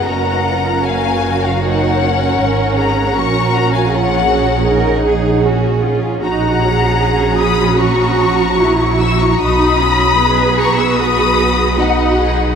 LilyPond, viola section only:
\new Staff \with { instrumentName = "Viola section" } { \time 4/4 \key fis \major \tempo 4 = 76 << { ais'2 ais'2 | ais'4 gis'2. | \key b \major fis'4 fis'2. | fis'4 b'4 gis'4 fis'4 | } \\ { cis'2 dis'8 cis'4. | cis'2 dis'4 cis'8 cis'8 | dis'8 cis'2~ cis'8 e'4 | dis'8 cis'8 b2 dis'8 dis'8 | } >> }